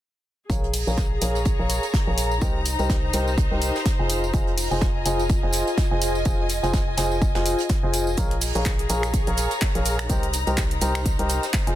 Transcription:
0.50 A#1 G#4 A#4 C#5 F5 A#5, kick, closed hi-hat, tambourine
0.64 closed hi-hat
0.73 open hi-hat, tambourine
0.78 A#5
0.87 A#1 G#4 A#4 C#5 F5 A#5, tambourine
0.97 kick, snare, closed hi-hat, tambourine
1.21 A#1 G#4 A#4 C#5 F5 A#5, closed hi-hat, open hi-hat, tambourine
1.35 closed hi-hat, tambourine
1.45 kick, closed hi-hat, tambourine
1.59 A#1 G#4 A#4 C#5 F5 A#5
1.70 closed hi-hat, open hi-hat, tambourine
1.83 closed hi-hat, tambourine
1.94 kick, snare, closed hi-hat, tambourine
2.07 A#1 G#4 A#4 C#5 F5 A#5
2.18 closed hi-hat, open hi-hat, tambourine
2.31 tambourine
2.41 C2 D#4 G4 A#4 C5 D#5 A#5, kick, closed hi-hat, tambourine
2.65 C5, closed hi-hat, open hi-hat, tambourine
2.79 C2 G4 A#4 C5 D#5 A#5, closed hi-hat, tambourine
2.90 kick, snare, closed hi-hat, tambourine
3.13 C2 G4 A#4 C5 D#5 A#5, closed hi-hat, open hi-hat, tambourine
3.27 tambourine
3.38 kick, closed hi-hat, tambourine
3.51 C2 G4 A#4 C5 D#5 A#5
3.62 closed hi-hat, open hi-hat, tambourine
3.75 snare, tambourine
3.85 kick, snare, closed hi-hat, open hi-hat, tambourine
3.99 F1 F4 G#4 C5 D#5 G#5
4.10 F4, closed hi-hat, open hi-hat, tambourine
4.24 tambourine
4.33 F1 F4 G#4 C5 D#5 G#5, kick, closed hi-hat, tambourine
4.47 closed hi-hat
4.58 open hi-hat, tambourine
4.67 D#5 G#5
4.71 F1 F4 G#4 C5 D#5 G#5, tambourine
4.81 kick, snare, closed hi-hat, tambourine
5.06 F1 F4 G#4 C5 D#5 G#5, closed hi-hat, open hi-hat, tambourine
5.19 closed hi-hat, tambourine
5.29 kick, closed hi-hat, tambourine
5.43 F1 F4 G#4 C5 D#5 G#5
5.52 closed hi-hat, open hi-hat, tambourine
5.67 closed hi-hat, tambourine
5.78 kick, snare, closed hi-hat, tambourine
5.91 F1 F4 G#4 C5 D#5 G#5
6.02 closed hi-hat, open hi-hat, tambourine
6.15 tambourine
6.25 F1 F4 G#4 C5 D#5 G#5, kick, closed hi-hat, tambourine
6.49 closed hi-hat, open hi-hat, tambourine
6.63 F1 F4 G#4 C5 D#5 G#5, closed hi-hat, tambourine
6.73 kick, snare, closed hi-hat, tambourine
6.97 F1 F4 G#4 C5 D#5 G#5, snare, closed hi-hat, open hi-hat, tambourine
7.11 tambourine
7.22 kick, closed hi-hat, tambourine
7.35 F1 F4 G#4 C5 D#5 G#5, snare, closed hi-hat
7.46 open hi-hat, tambourine
7.59 closed hi-hat, tambourine
7.69 kick, snare, closed hi-hat, open hi-hat, tambourine
7.83 F1 F4 G#4 C5 D#5 G#5
7.93 closed hi-hat, open hi-hat, tambourine
8.07 tambourine
8.17 A#1 G#4 A#4 C#5 F5 A#5, kick, closed hi-hat, tambourine, shaker
8.31 closed hi-hat, shaker
8.41 open hi-hat, tambourine, shaker
8.50 A#5
8.55 A#1 G#4 A#4 C#5 F5 A#5, closed hi-hat, tambourine, shaker
8.65 kick, snare, clap, closed hi-hat, tambourine, shaker
8.79 closed hi-hat, shaker
8.86 A#1 G#4 A#4 C#5 F5 A#5, closed hi-hat, open hi-hat, tambourine, shaker
9.03 finger snap, closed hi-hat, tambourine, shaker
9.13 kick, closed hi-hat, tambourine, shaker
9.27 A#1 G#4 A#4 C#5 F5 A#5, closed hi-hat, shaker
9.38 closed hi-hat, open hi-hat, tambourine, shaker
9.51 closed hi-hat, tambourine, shaker
9.61 kick, snare, clap, closed hi-hat, tambourine, shaker
9.75 A#1 G#4 A#4 C#5 F5 A#5, closed hi-hat, shaker
9.86 closed hi-hat, open hi-hat, tambourine, shaker
9.99 finger snap, tambourine, shaker
10.09 C2 D#4 G4 A#4 C5 D#5 A#5, kick, closed hi-hat, tambourine, shaker
10.23 closed hi-hat, shaker
10.33 closed hi-hat, open hi-hat, tambourine, shaker
10.47 C2 G4 A#4 C5 D#5 A#5, closed hi-hat, tambourine, shaker
10.58 kick, snare, clap, closed hi-hat, tambourine, shaker
10.71 closed hi-hat, shaker
10.81 C2 G4 A#4 C5 D#5 A#5, closed hi-hat, open hi-hat, tambourine, shaker
10.86 C5
10.95 finger snap, closed hi-hat, tambourine, shaker
11.05 kick, closed hi-hat, tambourine, shaker
11.19 C2 G4 A#4 C5 D#5 A#5, closed hi-hat, shaker
11.30 closed hi-hat, open hi-hat, tambourine, shaker
11.43 snare, closed hi-hat, tambourine, shaker
11.53 kick, snare, clap, closed hi-hat, open hi-hat, tambourine, shaker
11.67 F1 F4 G#4 C5 D#5 G#5, closed hi-hat, shaker

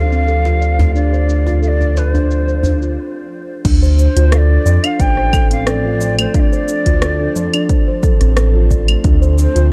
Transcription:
Already playing: D2 F3 C4 D4 F4 G4 A4 C5 F5
0.12 C4, cabasa
0.28 A4, cabasa
0.45 F4, djembe slap, cabasa
0.61 D5, cabasa
0.79 A3, djembe slap, djembe bass, cabasa
0.95 D4 D5, cabasa
1.13 C5, cabasa
1.29 D4, cabasa
1.46 F4, djembe tone, cabasa
1.62 A4 F5, cabasa
1.67 D5
1.80 D4, djembe tone, cabasa
1.96 B4 D5, djembe slap, cabasa
2.11 D4 C5, djembe tone
2.15 cabasa
2.30 C5, cabasa
2.48 C5, cabasa
2.63 D4, djembe bass, cabasa
2.82 F4, cabasa
3.64 D2 F3 C4 D4 A4 C5, kick, closed hi-hat, crash, cabasa
3.82 C5, cabasa
3.98 D4 C5, cabasa
4.16 D2 F4, closed hi-hat, cabasa
4.32 A4 F5, cross-stick, closed hi-hat, cabasa
4.37 D5
4.51 D4
4.65 F2 D5, cabasa
4.84 D4 F5, closed hi-hat, cabasa, claves
5.00 A1 C5 G5, kick, closed hi-hat, cabasa
5.17 C5, cross-stick
5.33 A4, kick, cabasa, claves
5.51 C4 F5, closed hi-hat, cabasa
5.67 A4 D5, cross-stick, closed hi-hat, cabasa
5.85 F4
6.01 D5, cabasa
6.19 A3 C5, closed hi-hat, cabasa, claves
6.34 D4 F5, kick, closed hi-hat, cabasa
6.39 D5
6.52 C5, cabasa
6.68 D4, cabasa
6.86 D2 F4, kick, closed hi-hat, cabasa
7.02 A4, cross-stick, closed hi-hat, cabasa
7.20 D4
7.36 F2 D5, cabasa
7.54 D4, closed hi-hat, cabasa, claves
7.69 C5, kick, closed hi-hat, cabasa
7.88 C5
8.03 A4, kick, cabasa
8.21 A1 C4, cross-stick, closed hi-hat, cabasa
8.37 A4, cross-stick, closed hi-hat, cabasa
8.55 F4
8.71 D5, kick, cabasa
8.88 A3, closed hi-hat, cabasa, claves
9.04 D2 D4, kick, closed hi-hat, cabasa
9.22 C5, cabasa
9.38 D4 C5, cabasa
9.56 D2 F4, closed hi-hat, cabasa

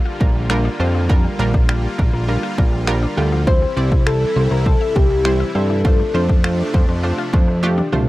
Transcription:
Already playing: D3 G3 A#3 F4
0.05 F4
0.20 A#1 G3 D4 F4 A#4, kick
0.35 G3
0.50 G3 D4 F4 A#4, finger snap
0.65 D4
0.80 F2 G3 D4 F4 C5
0.95 F3
1.09 F3 G3 D4 F4 A#4, kick
1.24 G3
1.39 A#1 G3 A#3 D4 F4 A#4
1.54 D4, kick
1.69 G3 D4 F4 G4, finger snap
1.98 A#1 G3 D4 F4 A#4, kick
2.13 A#1 A#3
2.28 G3 D4 F4 A#4
2.43 F4
2.58 A#1 G3 D4 F4 A#4, kick
2.73 G3
2.87 G3 D4 F4 A#4, finger snap
3.03 D4
3.17 D2 G3 D4 F4 G4
3.32 F3
3.47 C3 E3 G3 C4 E4 C5, kick
3.62 G3
3.77 C2 G3 C4 E4 D5
3.92 E4, kick
4.06 G3 C4 E4 A4 C5 E5, finger snap
4.36 C2 G3 C4 E4 C5
4.51 C2 C4 A#4
4.66 G3 C4 E4 A4 C5, kick
4.81 E5
4.95 C2 G3 C4 E4 G4 C5, kick
5.11 G3
5.25 G3 C4 E4 C5, finger snap
5.40 E4
5.55 G2 G3 C4 E4 A4 C5 E5
5.70 E3
5.85 C3 F3 A3 D4 F4 C5, kick
6.00 A3
6.14 F2 A3 C4 D4 F4 C5
6.29 D4, kick
6.44 A3 D4 F4 C5, finger snap
6.74 F2 A3 D4 F4 C5, kick
6.89 F2 C4
7.03 A3 D4 F4 C5
7.18 F4
7.33 F2 A3 D4 F4 C5, kick
7.48 A3
7.63 A3 D4 F4 G4, high tom
7.78 D4, mid tom
7.92 C2 A3 D4 F4 C5, mid tom

